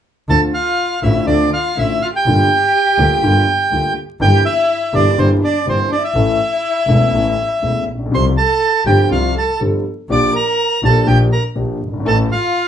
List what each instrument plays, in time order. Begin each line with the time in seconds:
0.28 double bass D2, grand piano D2 D3 A3 C4 F4, violin A4, bandoneon A5
0.53 violin F4, bandoneon F5
1.03 double bass A1, grand piano A1 A2 D3 A3 C4 F4, violin E4, bandoneon E5
1.26 double bass D2, grand piano D2 D3 A3 C4 F4, violin D4, bandoneon D5
1.53 violin F4, bandoneon F5
1.76 double bass A1, grand piano A1 A2 D3 A3 C4 F4, violin E4, bandoneon E5
2.02 violin F4, bandoneon F5
2.15 violin G4, bandoneon G5
2.26 double bass G1, grand piano G1 G2 D3 G3 A#3 F4
2.98 double bass D2, grand piano D2 D3 G3 A#3 F4
3.23 double bass G1, grand piano G1 G2 D3 G3 A#3 F4
3.71 double bass D2, grand piano D2 D3 G3 A#3 F4
4.20 grand piano G1 G2 E3 G3 A#3 G4, double bass G1, violin G4, bandoneon G5
4.45 violin E4, bandoneon E5
4.93 grand piano G1 G2 E3 G3 A#3 G4, double bass G1, violin D4, bandoneon D5
5.17 grand piano G1 G2 E3 G3 A#3 G4, double bass G1, violin C4, bandoneon C5
5.42 violin D4, bandoneon D5
5.66 double bass G1, grand piano G1 G2 E3 G3 A#3 G4, violin C4, bandoneon C5
5.91 violin D4, bandoneon D5
6.03 violin E4, bandoneon E5
6.14 double bass A1, grand piano A1 A2 E3 A3 C#4 A4
6.87 double bass E1, grand piano E1 E2 E3 A3 C#4 A4
7.12 double bass A1, grand piano A1 A2 E3 A3 C#4 A4
7.61 double bass E1, grand piano E1 E2 E3 A3 C#4 A4
7.87 double bass A#1
7.94 grand piano A1
7.99 grand piano A#1
8.05 grand piano B1
8.11 grand piano C2 C3 F3 G3 C4 G4, double bass C2, violin C5, bandoneon C6
8.37 violin A4, bandoneon A5
8.85 double bass G1, grand piano G1 G2 F3 G3 C4 G4, violin G4, bandoneon G5
9.09 double bass C2, grand piano C2 C3 F3 G3 C4 G4, violin F4, bandoneon F5
9.34 violin A4, bandoneon A5
9.60 double bass G1, grand piano G1 G2 F3 G3 C4 G4
10.09 double bass A#1, grand piano A#1 A#2 F3 A#3 D4 G4, violin D5, bandoneon D6
10.35 violin A#4, bandoneon A#5
10.82 double bass A#1, grand piano A#1 A#2 F3 A#3 D4 G4, violin A4, bandoneon A5
11.07 grand piano A#1 A#2 F3 A#3 D4 G4, double bass A#1, violin G4, bandoneon G5
11.32 violin A#4, bandoneon A#5
11.55 grand piano A#1 A#2 F3 A#3 D4 G4, double bass A#1
11.81 double bass G1
11.87 grand piano F#1
11.93 grand piano G1
11.99 grand piano G#1
12.05 grand piano A1 A2 E3 A3 C#4 A4, double bass A1, violin A4, bandoneon A5
12.31 violin F4, bandoneon F5